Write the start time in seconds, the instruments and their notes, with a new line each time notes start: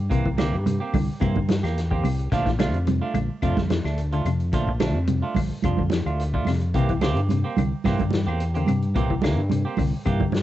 0.10 fingered electric bass C2, clean electric guitar C3 E3 A#3 C4, muted clean electric guitar stroke, kick, closed hi-hat
0.26 clean electric guitar E3, kick
0.38 clean electric guitar D3 E3 A#3 C4 G4, snare, closed hi-hat, high conga, claves
0.52 fingered electric bass G2
0.66 clean electric guitar C3, closed hi-hat, high conga
0.80 clean electric guitar A#3 C4 G4
0.93 fingered electric bass C2, clean electric guitar D3, kick, open hi-hat, high conga, claves
1.20 fingered electric bass G2, clean electric guitar C3 E3 A#3 C4, muted clean electric guitar stroke, kick, closed hi-hat, high conga, claves
1.36 clean electric guitar D3, kick, high conga
1.49 clean electric guitar E3, snare, closed hi-hat, high conga
1.63 fingered electric bass E2, clean electric guitar A#3 G4, muted clean electric guitar stroke, snare, closed hi-hat, claves
1.78 snare, closed hi-hat
1.91 clean electric guitar D3 A#3 C4 G4, kick
2.04 fingered electric bass C2, clean electric guitar C3, open hi-hat, high conga, claves
2.19 closed hi-hat
2.32 fingered electric bass A#1, clean electric guitar D3 F3 A3 D4 F4, kick, snare, closed hi-hat
2.46 clean electric guitar E3, kick, snare, closed hi-hat
2.59 clean electric guitar D3 F3 A3 D4 F4, snare, closed hi-hat, high conga, claves
2.73 fingered electric bass F2, closed hi-hat
2.87 clean electric guitar C3, closed hi-hat, high conga
3.02 clean electric guitar A3 D4 F4
3.14 fingered electric bass A#1, clean electric guitar D3, closed hi-hat, high conga, claves
3.42 fingered electric bass F2, clean electric guitar C3 F3 A3 D4 F4, kick, closed hi-hat, claves
3.57 clean electric guitar D3, kick, snare, closed hi-hat, high conga
3.70 clean electric guitar E3, snare, closed hi-hat, high conga
3.84 fingered electric bass D2, clean electric guitar A3 D4, muted clean electric guitar stroke, snare, claves
3.98 closed hi-hat
4.12 clean electric guitar D3 A3 D4 F4, closed hi-hat
4.25 fingered electric bass F2, clean electric guitar C3, closed hi-hat, claves
4.40 closed hi-hat
4.53 fingered electric bass A#1, clean electric guitar D3 F3 A3 D4 F4, kick, closed hi-hat
4.68 muted clean electric guitar stroke, kick
4.80 clean electric guitar D3 F3 A3 D4, muted clean electric guitar stroke, snare, closed hi-hat, high conga, claves
4.95 fingered electric bass F2
5.07 clean electric guitar C3, closed hi-hat, high conga
5.22 clean electric guitar A3 D4 F4
5.35 fingered electric bass A#1, clean electric guitar D3, kick, open hi-hat, high conga, claves
5.62 fingered electric bass F2, clean electric guitar C3 F3 D4 F4, muted clean electric guitar stroke, kick, closed hi-hat, high conga, claves
5.77 clean electric guitar D3, kick, high conga
5.90 clean electric guitar E3, snare, closed hi-hat, high conga
6.06 fingered electric bass D2, clean electric guitar A3 D4 F4, closed hi-hat, claves
6.20 closed hi-hat
6.34 clean electric guitar D3 A3 D4 F4, kick
6.45 fingered electric bass F2, clean electric guitar C3, snare, open hi-hat, high conga, claves
6.61 closed hi-hat
6.74 fingered electric bass C2, clean electric guitar C3 E3 A#3 C4 G4, kick, closed hi-hat
6.89 clean electric guitar E3, kick, closed hi-hat
7.01 clean electric guitar D3 E3 A#3 C4 G4, snare, closed hi-hat, high conga, claves
7.16 fingered electric bass G2, closed hi-hat
7.29 clean electric guitar C3, closed hi-hat, high conga
7.44 clean electric guitar A#3 C4 G4
7.57 fingered electric bass C2, clean electric guitar D3, closed hi-hat, high conga, claves
7.84 fingered electric bass G2, clean electric guitar C3 E3 A#3 C4 G4, kick, snare, closed hi-hat, high conga, claves
7.99 clean electric guitar D3, kick, closed hi-hat, high conga
8.11 clean electric guitar E3, snare, closed hi-hat, high conga
8.26 fingered electric bass E2, clean electric guitar A#3 C4 G4, claves
8.40 closed hi-hat
8.54 clean electric guitar D3 A#3 C4 G4, closed hi-hat
8.66 fingered electric bass G2, clean electric guitar C3, closed hi-hat, high conga, claves
8.82 closed hi-hat
8.95 fingered electric bass C2, clean electric guitar A#2 E3 A#3 C4 G4, kick, closed hi-hat
9.10 clean electric guitar E3, kick
9.22 clean electric guitar D3 E3 A#3, muted clean electric guitar stroke, snare, closed hi-hat, high conga, claves
9.37 fingered electric bass G2
9.49 clean electric guitar C3, closed hi-hat, high conga
9.65 clean electric guitar A#3 C4 G4
9.77 fingered electric bass C2, clean electric guitar D3, kick, open hi-hat, high conga, claves
10.06 fingered electric bass G2, clean electric guitar C3 E3 A#3 G4, muted clean electric guitar stroke, kick, closed hi-hat, claves
10.20 clean electric guitar D3, kick, high conga
10.32 clean electric guitar E3, snare, closed hi-hat, high conga